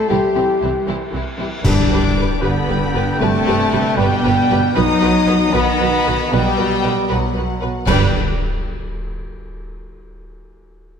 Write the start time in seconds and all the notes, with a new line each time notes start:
Already playing: G3 E4 C5 E5
0.09 C2 E3 G3 C4 E4 G4 G5
0.35 C2 E3 C4 E4 G4
0.62 C2 E3 C4 E4 G4
0.87 C2 E3 C4 E4 G4
1.12 C2 E3 C4 E4 G4
1.38 C2 E3 C4 E4 G4
1.64 G1 G2 G3 D4 G4 B4 G5 D6, concert bass drum, crash
1.91 G1 G4 B4
2.17 G1 G4 B4
2.41 G1 D3 B3 G4 B4 B5
2.67 G1 G4 B4
2.94 G1 G4 B4
3.18 G1 C3 A3 G4 B4 A5
3.46 G1 G4 B4
3.72 G1 G4 B4
3.96 G1 B2 G3 G4 B4
4.00 B4 G5
4.24 G1 G4 B4
4.50 G1 G4 B4
4.75 B1 F#3 B3 D#4 F#4 B4 D#5 D#6
5.01 B1 F#4 B4
5.27 B1 F#4 B4
5.52 B1 D#3 B3 F#4 B4 B5
5.79 B1 F#4 B4
6.05 B1 F#4 B4
6.32 B1 B2 G3 F#4 B4 G5
6.57 B1 F#4 B4
6.83 B1 F#4 B4
7.08 B1 B2 F#3 F#4 B4 F#5
7.33 B1 F#4 B4
7.61 B1 F#4 B4
7.86 G1 G2 G3 B3 D4 B4 D5 G5, concert bass drum, crash